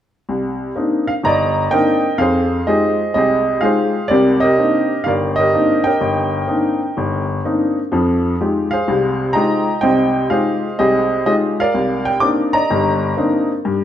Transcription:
0.29 C2
0.76 A#3 C4 D4 D#4
1.07 F5
1.23 G1 D5 D#5 A#5
1.71 A#3 C4 D4 D#4 A#4 D#5 G5
2.18 F2 G#4 C5 F5
2.67 G#3 D#4 F4 G4 G#4 D#5
3.14 C2 G4 G#4 D#5
3.61 G#3 D#4 F4 G4 G#4 C5 F5
4.08 C2 C3 G4 A#4 D5
4.40 G4 A#4 D#5
4.57 A#3 C4 D4 D#4
5.04 G1 A#4 D5 F5
5.36 G4 D#5
5.40 A#4
5.53 A#3 C4 D4 D#4
5.84 A#4 D#5 G5
6.01 G1
6.48 A#3 C4 D4 D#4
6.97 G1
7.45 A#3 C4 D4 D#4
7.92 F2 F3
8.41 G#3 D#4 F4 G4
8.71 G#4 C5 F5
8.88 C2 C3
9.33 G#3 D#4 F4 G4 D#5 G5 A#5
9.81 C2 C3 C5 D#5 G5
10.30 G#3 D#4 F4 G4 G#4 C5 F5
10.79 C2 G4 G#4 D#5
11.26 G#3 D#4 F4 G4 D#5
11.60 A#4 D5 F5
11.74 C2
12.05 G5
12.20 A#3 C4 D4 D#4 D6
12.53 D5 D#5 A#5
12.70 G1 G2
13.17 A#3 C4 D4 D#4
13.65 G2

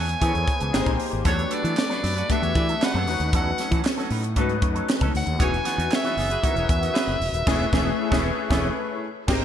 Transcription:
Already playing: E2 B3 E4 G#4 A4 C#5 G#5
0.08 muted clean electric guitar stroke, closed hi-hat
0.21 E3 B3 C#4 E4 G#4 A4 C5, kick, closed hi-hat
0.28 C#5
0.34 E2, muted clean electric guitar stroke, closed hi-hat
0.47 muted clean electric guitar stroke, kick, closed hi-hat
0.60 C#2 E3 B3 C#4 G#4, closed hi-hat
0.73 G#1 A#3 D#4 G4 G#4 B4, muted clean electric guitar stroke, snare, clap
0.80 C5
0.86 A#1 G3 C4 D#4 A#4, kick, closed hi-hat
0.99 muted clean electric guitar stroke, open hi-hat
1.11 G#1, muted clean electric guitar stroke, closed hi-hat
1.24 E2 F#3 A3 B3 D4 F#4 G4 A4 B4 C#5, kick, closed hi-hat
1.28 C#5
1.39 closed hi-hat
1.50 F#3 B3 D4 F#4 A4 B4, closed hi-hat
1.54 D5
1.63 E3 F#3 B3 D4 A4, closed hi-hat
1.76 A4 B4 D5, muted clean electric guitar stroke, snare, clap
1.89 F#3 B3 D4 F#4 A4 B4, snare, closed hi-hat
2.03 F#2 F#3 B3 D4 B4, snare, open hi-hat
2.16 D4 F#4 B4, muted clean electric guitar stroke, closed hi-hat
2.28 F#3 A3 B3 D4 F#4 G4 A4 B4 E5, kick, closed hi-hat
2.42 E2 F#4 A4 C#5, muted clean electric guitar stroke, closed hi-hat
2.54 E3 A4 B4 D5, muted clean electric guitar stroke, kick, closed hi-hat
2.69 F#3 B3 D4 A4, closed hi-hat
2.81 D4 F#4 B4 F#5, muted clean electric guitar stroke, snare, clap
2.94 F#2 F#3 B3 D4 A4, closed hi-hat
3.07 E2 A3 C#4 D#4 F#4 B4, muted clean electric guitar stroke, open hi-hat
3.20 D#2, muted clean electric guitar stroke, closed hi-hat
3.33 E2 F#3 C#4 D#4 A4 F#5, kick, closed hi-hat
3.58 F#3 C#4 D#4 A4, snare, closed hi-hat
3.71 E3 F#3 C#4 D#4 A4, kick, closed hi-hat
3.84 muted clean electric guitar stroke, snare, clap
3.97 F#3 C#4 D#4 A4, snare, closed hi-hat
4.10 A2 F#3 C#4 D#4 B4, open hi-hat
4.24 muted clean electric guitar stroke, closed hi-hat
4.36 G#2 F#3 A3 C#4 D#4 F#4 A4 B4, kick, closed hi-hat
4.49 muted clean electric guitar stroke, closed hi-hat
4.62 F#2, muted clean electric guitar stroke, kick, closed hi-hat
4.75 F#3 C#4 D#4 A4, closed hi-hat
4.89 snare, clap
5.01 C#2 F#3 C#4 D#4 A4, kick, closed hi-hat
5.14 D2 F#5, open hi-hat
5.26 D#2, muted clean electric guitar stroke, closed hi-hat
5.38 E1 E3 F#3 B3 C#4 D#4 E4 F#4 G#4 B4 C#5, kick, closed hi-hat
5.44 G#5
5.54 closed hi-hat
5.64 E3 B3 D#4 F#4 G#4 B4, snare, closed hi-hat
5.78 E2 E3 B3 D#4 F#4, closed hi-hat
5.90 F#4 G#4 C#5, muted clean electric guitar stroke, snare, clap
5.94 E5
6.04 E3 B3 D#4 F#4 G#4 B4, snare, closed hi-hat
6.17 F#1 E3 B3 D#4 G#4, snare, open hi-hat
6.29 F#4 G#4 B4, muted clean electric guitar stroke, closed hi-hat
6.42 E3 F#3 B3 C#4 D#4 E4 F#4 A#4, kick, closed hi-hat
6.51 B4
6.55 E1 F#4 G#4 C#5, muted clean electric guitar stroke, closed hi-hat
6.68 E2 G#4 B4 E5, muted clean electric guitar stroke, kick, closed hi-hat
6.81 E3 B3 D#4 F#4, closed hi-hat
6.93 F#4 G#4 B4, snare, clap
7.07 F#1, muted clean electric guitar stroke, closed hi-hat
7.20 E1, open hi-hat
7.32 D#1, muted clean electric guitar stroke, closed hi-hat
7.46 E1 E3 A3 B3 C#4 E4 G#4 B4, kick, snare, crash
7.72 E1 E3 A3 B3 C#4 E4 G#4 B4, kick, snare
8.10 E1 E3 A3 B3 C#4 E4 G#4 B4, kick, snare
8.50 E1 E3 A3 B3 C#4 E4 G#4 B4, kick, snare
9.27 G#1 D#3 G#3 A#3 C4 D#4 G4 A#4, kick, snare, crash

